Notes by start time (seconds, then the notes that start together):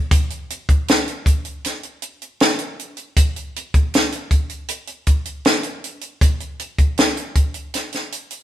0.11 kick, closed hi-hat
0.30 closed hi-hat
0.50 closed hi-hat
0.69 kick, closed hi-hat
0.88 snare, closed hi-hat
1.08 closed hi-hat
1.26 kick, closed hi-hat
1.45 closed hi-hat
1.64 snare, closed hi-hat
1.83 closed hi-hat
2.02 closed hi-hat
2.22 closed hi-hat
2.40 snare, closed hi-hat
2.59 closed hi-hat
2.79 closed hi-hat
2.97 closed hi-hat
3.17 kick, closed hi-hat
3.36 closed hi-hat
3.56 closed hi-hat
3.74 kick, closed hi-hat
3.94 snare, closed hi-hat
4.12 closed hi-hat
4.31 kick, closed hi-hat
4.49 closed hi-hat
4.68 closed hi-hat
4.87 closed hi-hat
5.07 kick, closed hi-hat
5.25 closed hi-hat
5.45 snare, closed hi-hat
5.63 closed hi-hat
5.84 closed hi-hat
6.01 closed hi-hat
6.21 kick, closed hi-hat
6.40 closed hi-hat
6.59 closed hi-hat
6.79 kick, closed hi-hat
6.97 snare, closed hi-hat
7.17 closed hi-hat
7.35 kick, closed hi-hat
7.54 closed hi-hat
7.74 snare, closed hi-hat
7.92 snare, closed hi-hat
8.12 closed hi-hat
8.31 closed hi-hat